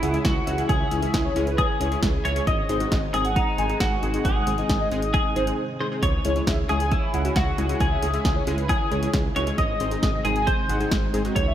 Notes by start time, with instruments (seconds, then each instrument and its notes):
Already playing: string machine C#3 C#4 E4 G#4, clean electric guitar E4
0.03 analog synth bass C#2, analog polysynth G#3 C#4 E4 G#4 F#5, closed hi-hat
0.14 analog polysynth G#3 C#4 E4 G#4, closed hi-hat
0.25 analog synth bass C#2, clean electric guitar F#4, kick, snare, closed hi-hat
0.47 analog synth bass C#2, analog polysynth G#3 C#4 E4 F#4, closed hi-hat
0.58 analog polysynth G#3 C#4 E4 G#4, closed hi-hat
0.69 analog synth bass C#2, clean electric guitar G#4, kick, closed hi-hat
0.80 analog polysynth E5
0.91 analog synth bass C#2, analog polysynth G#3 C#4 E4 G#4, closed hi-hat
1.02 analog polysynth G#3 C#4 E4 G#4 E5, closed hi-hat
1.14 analog synth bass C#2, kick, snare, closed hi-hat
1.25 analog polysynth C#5
1.36 analog synth bass C#2, analog polysynth G#3 C#4 E4 G#4, closed hi-hat
1.47 analog polysynth B4, closed hi-hat
1.58 clean electric guitar G#4, kick, closed hi-hat
1.80 analog synth bass C#2, analog polysynth G#3 C#4 E4 G#4 C#5, closed hi-hat
1.92 analog polysynth G#3 C#4 E4 G#4, closed hi-hat
2.03 analog synth bass C#2, kick, snare, closed hi-hat
2.25 analog synth bass C#2, analog polysynth G#3 C#4 E4 G#4, clean electric guitar C#5, closed hi-hat
2.36 analog polysynth G#3 C#4 E4 G#4, closed hi-hat
2.47 analog synth bass G#1, string machine G#3 C4 D#4, clean electric guitar D#5, kick, closed hi-hat
2.69 analog synth bass G#1, analog polysynth G#3 C4 D#4 G#4 C5, closed hi-hat
2.80 analog polysynth G#3 C4 D#4 F#4, closed hi-hat
2.91 analog synth bass G#1, analog polysynth D#5, kick, snare, closed hi-hat
3.14 analog synth bass G#1, analog polysynth G#3 C4 D#4 G#4, clean electric guitar G#4, closed hi-hat
3.25 analog polysynth F#5, closed hi-hat
3.36 clean electric guitar D#4, kick, closed hi-hat
3.58 analog synth bass G#1, analog polysynth G#3 C4 D#4 G#4 G#5, closed hi-hat
3.69 analog polysynth G#3 C4 D#4 G#4, closed hi-hat
3.80 analog synth bass G#1, clean electric guitar F#4, kick, snare, closed hi-hat
4.03 analog synth bass G#1, analog polysynth G#3 C4 D#4 G#4, closed hi-hat
4.14 analog polysynth G#3 C4 D#4 G#4, closed hi-hat
4.25 analog synth bass G#1, clean electric guitar G#4, kick, closed hi-hat
4.36 analog polysynth F#5
4.47 analog synth bass G#1, analog polysynth G#3 C4 D#4 G#4, closed hi-hat
4.58 analog polysynth G#3 C4 D#4 G#4 D#5, closed hi-hat
4.69 analog synth bass G#1, kick, snare, closed hi-hat
4.80 analog polysynth D#5
4.91 analog synth bass G#1, analog polysynth G#3 C4 D#4 G#4, closed hi-hat
5.02 analog polysynth D#5, closed hi-hat
5.14 clean electric guitar G#4, kick, closed hi-hat
5.36 analog synth bass G#1, analog polysynth G#3 C4 D#4 G#4 C5, closed hi-hat
5.47 analog polysynth G#3 C4 D#4 G#4, closed hi-hat
5.80 analog polysynth G#3 C4 D#4 G#4, clean electric guitar C5
5.92 analog polysynth G#3 C4 D#4 G#4
6.03 analog synth bass C#2, string machine C#3 C#4 E4 G#4, clean electric guitar C#5, kick, closed hi-hat
6.25 analog synth bass C#2, analog polysynth G#3 C#4 E4 G#4 C#5, closed hi-hat
6.36 analog polysynth G#3 C#4 E4 G#4, closed hi-hat
6.47 analog synth bass C#2, analog polysynth E5, kick, snare, closed hi-hat
6.69 analog synth bass C#2, analog polysynth G#3 C#4 E4 G#4, clean electric guitar G#4, closed hi-hat
6.80 analog polysynth G#5, closed hi-hat
6.92 clean electric guitar E4, kick, closed hi-hat
7.14 analog synth bass C#2, analog polysynth G#3 C#4 E4 G#4 F#5, closed hi-hat
7.25 analog polysynth G#3 C#4 E4 F#4, closed hi-hat
7.36 analog synth bass C#2, clean electric guitar F#4, kick, snare, closed hi-hat
7.58 analog synth bass C#2, analog polysynth G#3 C#4 E4 G#4, closed hi-hat
7.69 analog polysynth G#3 C#4 E4 G#4, closed hi-hat
7.80 analog synth bass C#2, clean electric guitar G#4, kick, closed hi-hat
7.92 analog polysynth E5
8.03 analog synth bass C#2, analog polysynth G#3 C#4 E4 G#4, closed hi-hat
8.14 analog polysynth G#3 C#4 E4 G#4 E5, closed hi-hat
8.25 analog synth bass C#2, kick, snare, closed hi-hat
8.36 analog polysynth C#5
8.47 analog synth bass C#2, analog polysynth G#3 C#4 E4 G#4, closed hi-hat
8.58 analog polysynth B4, closed hi-hat
8.69 clean electric guitar G#4, kick, closed hi-hat
8.91 analog synth bass C#2, analog polysynth G#3 C#4 E4 G#4 C#5, closed hi-hat
9.03 analog polysynth G#3 C#4 E4 G#4, closed hi-hat
9.14 analog synth bass C#2, kick, snare, closed hi-hat
9.36 analog synth bass C#2, analog polysynth G#3 C#4 E4 F#4, clean electric guitar C#5, closed hi-hat
9.47 analog polysynth G#3 C#4 E4 G#4, closed hi-hat
9.58 analog synth bass G#1, string machine G#3 C4 D#4, clean electric guitar D#5, kick, closed hi-hat
9.80 analog synth bass G#1, analog polysynth G#3 C4 D#4 G#4 C5, closed hi-hat
9.91 analog polysynth G#3 C4 D#4 G#4, closed hi-hat
10.03 analog synth bass G#1, analog polysynth D#5, kick, snare, closed hi-hat
10.25 analog synth bass G#1, analog polysynth G#3 C4 D#4 G#4, clean electric guitar G#4, closed hi-hat
10.36 analog polysynth G#5, closed hi-hat
10.47 clean electric guitar C5, kick, closed hi-hat
10.69 analog synth bass G#1, analog polysynth G#3 C4 D#4 G#4 F#5, closed hi-hat
10.80 analog polysynth G#3 C4 D#4 G#4, closed hi-hat
10.91 analog synth bass G#1, kick, snare, closed hi-hat
11.14 analog synth bass G#1, analog polysynth G#3 C4 D#4 G#4, closed hi-hat
11.25 analog polysynth G#3 C4 D#4 F#4, closed hi-hat
11.36 analog synth bass C#2, string machine C#3 E4, clean electric guitar C#5, kick, closed hi-hat
11.47 analog polysynth E5